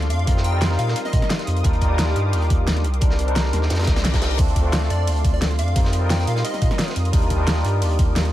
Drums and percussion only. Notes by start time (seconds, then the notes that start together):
0.02 snare, closed hi-hat
0.10 closed hi-hat
0.19 closed hi-hat
0.27 kick, closed hi-hat
0.37 snare
0.44 closed hi-hat
0.61 snare, closed hi-hat
0.71 snare
0.79 closed hi-hat
0.88 snare
0.96 closed hi-hat
1.05 snare, closed hi-hat
1.13 kick, closed hi-hat
1.22 snare
1.30 snare, closed hi-hat
1.39 snare, closed hi-hat
1.47 closed hi-hat
1.57 closed hi-hat
1.64 kick, closed hi-hat
1.73 closed hi-hat
1.81 kick, closed hi-hat
1.98 snare, closed hi-hat
2.08 snare
2.16 closed hi-hat
2.33 closed hi-hat, open hi-hat
2.42 closed hi-hat
2.50 kick, closed hi-hat
2.67 snare, closed hi-hat
2.77 snare, closed hi-hat
2.84 closed hi-hat
2.94 closed hi-hat
3.01 kick, closed hi-hat
3.10 snare
3.19 closed hi-hat
3.28 closed hi-hat
3.36 snare, closed hi-hat
3.45 snare
3.53 snare, closed hi-hat
3.62 snare
3.70 snare, closed hi-hat
3.75 snare, closed hi-hat
3.79 snare, closed hi-hat
3.83 snare, closed hi-hat
3.87 kick, snare, closed hi-hat
3.96 snare, closed hi-hat
4.04 snare, closed hi-hat
4.14 kick, snare, closed hi-hat
4.22 snare, closed hi-hat
4.30 snare, closed hi-hat
4.38 kick, closed hi-hat, ride
4.48 closed hi-hat
4.56 kick, closed hi-hat, ride
4.73 snare, closed hi-hat, ride
4.83 snare
4.90 closed hi-hat, ride
5.07 closed hi-hat, open hi-hat, ride
5.16 closed hi-hat
5.25 kick, closed hi-hat, ride
5.42 snare, closed hi-hat, ride
5.51 snare, closed hi-hat
5.59 closed hi-hat, ride
5.68 closed hi-hat
5.76 kick, closed hi-hat, ride
5.85 snare
5.93 closed hi-hat, ride
6.10 snare, closed hi-hat, ride
6.19 snare
6.27 closed hi-hat, ride
6.36 snare
6.45 closed hi-hat, ride
6.54 snare, closed hi-hat
6.62 kick, closed hi-hat, ride
6.71 snare
6.79 snare, closed hi-hat, ride
6.88 snare, closed hi-hat
6.96 closed hi-hat, ride
7.05 closed hi-hat
7.13 kick, closed hi-hat, ride
7.22 closed hi-hat
7.30 kick, closed hi-hat, ride
7.47 snare, closed hi-hat, ride
7.57 snare
7.65 closed hi-hat, ride
7.82 closed hi-hat, open hi-hat, ride
7.91 closed hi-hat
7.99 kick, closed hi-hat, ride
8.16 snare, closed hi-hat, ride
8.25 snare, closed hi-hat